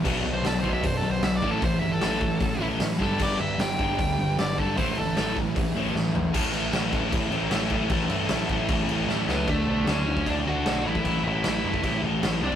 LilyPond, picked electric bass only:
\new Staff \with { instrumentName = "Picked electric bass" } { \clef bass \time 4/4 \key a \mixolydian \tempo 4 = 153 b,,8 b,,8 b,,8 b,,8 fis,8 b,,8 b,,8 a,,8 | a,,8 g,,8 a,,8 a,,8 a,,8 a,,8 a,8 g,,8 | g,,8 g,,8 g,,8 g,,8 d,8 g,,8 g,,8 g,,8 | a,,8 g,,8 a,,8 a,,8 a,,8 a,,8 a,8 a,,8 |
a,,4 a,,4 a,,8 a,,8 a,,4 | a,,8 g,8 a,,8 a,,8 a,,8 a,,8 a,,8 cis,8 | \key a \major d,8 b,,8 d,8 d,8 d,8 d,8 b,,8 a,,8 | a,,8 a,,8 a,,8 fis,,8 a,,8 a,,8 a,,8 c,8 | }